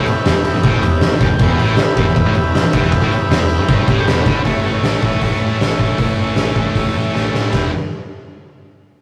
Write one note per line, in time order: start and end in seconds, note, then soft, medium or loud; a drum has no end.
0.00 1.34 G4 medium
0.00 1.35 B4 medium
0.00 1.01 E5 medium
0.06 muted distorted electric guitar stroke medium
0.06 muted picked electric bass stroke soft
0.06 ride medium
0.24 0.33 E1 loud
0.24 0.34 E2 loud
0.24 snare loud
0.24 ride loud
0.34 0.52 E1 medium
0.34 0.50 E2 medium
0.45 ride medium
0.54 muted distorted electric guitar stroke medium
0.54 muted picked electric bass stroke soft
0.54 snare soft
0.63 0.81 A1 loud
0.63 0.82 A2 loud
0.63 kick loud
0.63 ride loud
0.82 1.00 E1 medium
0.82 0.98 E2 medium
0.82 ride medium
1.01 1.10 E1 medium
1.01 1.10 E2 medium
1.01 1.20 E5 medium
1.01 snare loud
1.01 ride loud
1.10 muted picked electric bass stroke soft
1.10 muted distorted electric guitar stroke medium
1.20 1.29 E1 loud
1.20 1.29 E2 loud
1.20 kick loud
1.20 ride medium
1.24 1.40 G5 medium
1.30 1.39 E1 medium
1.30 1.40 E2 medium
1.39 1.57 E1 loud
1.39 1.59 E2 loud
1.39 4.42 G4 medium
1.39 4.42 B4 medium
1.39 3.86 E5 medium
1.39 kick loud
1.39 crash loud
1.59 1.76 A1 loud
1.59 1.78 A2 loud
1.59 ride medium
1.77 muted picked electric bass stroke soft
1.77 muted distorted electric guitar stroke medium
1.77 snare loud
1.77 ride loud
1.97 2.05 E1 loud
1.97 2.06 E2 loud
1.97 kick loud
1.97 ride medium
2.06 2.15 E1 medium
2.06 2.14 E2 medium
2.06 snare soft
2.15 2.24 E1 medium
2.15 2.25 E2 medium
2.15 kick medium
2.15 ride loud
2.25 2.35 A1 loud
2.25 2.34 A2 loud
2.35 2.53 E1 medium
2.35 2.50 E2 medium
2.35 ride medium
2.55 snare loud
2.55 ride loud
2.62 muted distorted electric guitar stroke medium
2.62 muted picked electric bass stroke soft
2.73 2.82 D2 medium
2.73 2.81 D3 loud
2.73 kick loud
2.73 ride medium
2.82 2.91 E2 loud
2.82 2.91 E3 loud
2.92 3.01 E1 medium
2.92 3.02 E2 medium
2.92 kick loud
2.92 ride loud
3.01 3.10 A1 loud
3.01 3.10 A2 loud
3.01 kick medium
3.11 muted distorted electric guitar stroke medium
3.11 muted picked electric bass stroke soft
3.11 ride medium
3.29 3.38 E1 loud
3.29 3.39 E2 loud
3.29 snare loud
3.29 ride loud
3.39 3.57 E1 medium
3.39 3.55 E2 medium
3.49 ride medium
3.60 muted picked electric bass stroke soft
3.60 muted distorted electric guitar stroke medium
3.68 3.87 G1 loud
3.68 3.87 G2 loud
3.68 kick loud
3.68 ride loud
3.87 4.06 A1 loud
3.87 4.07 A2 loud
3.87 3.96 E5 medium
3.87 kick loud
3.87 ride medium
4.00 4.07 G5 medium
4.07 4.25 E1 loud
4.07 4.25 E2 loud
4.07 4.43 B5 medium
4.07 snare loud
4.07 ride loud
4.25 4.44 D2 medium
4.25 4.43 D3 loud
4.25 kick loud
4.25 ride medium
4.44 4.57 A1 medium
4.44 4.64 A2 medium
4.44 4.65 E3 medium
4.44 4.66 A3 loud
4.44 7.49 A4 medium
4.44 7.48 C#5 medium
4.44 7.48 E5 medium
4.44 kick loud
4.44 open hi-hat medium
4.64 4.76 A1 medium
4.64 4.83 A2 medium
4.64 4.85 E3 medium
4.64 4.86 A3 medium
4.82 4.95 A1 medium
4.82 5.03 A2 loud
4.82 5.04 E3 loud
4.82 snare loud
4.82 open hi-hat medium
4.86 5.05 A3 loud
5.02 5.15 A1 medium
5.02 5.22 A2 medium
5.02 5.24 E3 medium
5.02 5.24 A3 medium
5.02 kick medium
5.12 snare soft
5.21 5.34 A1 loud
5.21 5.42 A2 medium
5.21 5.43 E3 medium
5.21 5.43 A3 medium
5.21 kick medium
5.21 open hi-hat medium
5.41 5.53 A2 medium
5.41 5.59 A2 medium
5.41 5.61 E3 medium
5.41 5.62 A3 loud
5.60 5.72 A1 medium
5.60 5.79 A2 medium
5.60 5.80 E3 medium
5.60 5.81 A3 medium
5.60 snare loud
5.60 open hi-hat medium
5.79 5.92 A2 medium
5.79 5.97 A2 medium
5.79 5.97 E3 medium
5.79 5.98 A3 medium
5.79 kick medium
5.98 6.10 A1 medium
5.98 6.18 A2 medium
5.98 6.19 E3 medium
5.98 6.20 A3 loud
5.98 kick loud
5.98 open hi-hat medium
6.18 6.30 A1 medium
6.18 6.36 A2 medium
6.18 6.38 E3 medium
6.18 6.39 A3 medium
6.36 6.50 A1 medium
6.36 6.54 A2 loud
6.36 6.56 E3 loud
6.36 snare loud
6.36 open hi-hat medium
6.40 6.56 A3 loud
6.56 6.69 A1 medium
6.56 6.76 A2 medium
6.56 6.76 E3 loud
6.56 6.78 A3 loud
6.56 kick medium
6.75 6.88 A1 medium
6.75 6.94 A2 medium
6.75 6.95 E3 medium
6.75 6.96 A3 medium
6.75 kick medium
6.75 open hi-hat medium
6.95 7.12 A2 medium
6.95 7.08 A2 medium
6.95 7.12 E3 medium
6.95 7.14 A3 medium
7.13 7.28 A1 medium
7.13 7.32 A2 medium
7.13 7.33 E3 medium
7.13 7.34 A3 medium
7.13 snare medium
7.33 7.52 A2 medium
7.33 7.47 A2 medium
7.33 7.52 E3 medium
7.33 7.52 A3 medium
7.33 snare medium
7.50 7.71 E1 medium
7.50 7.69 E2 medium
7.50 7.70 G4 medium
7.50 7.69 B4 medium
7.50 7.69 E5 medium
7.50 kick medium
7.50 snare medium
7.50 ride bell medium
7.55 7.69 B2 medium
7.55 7.70 E3 medium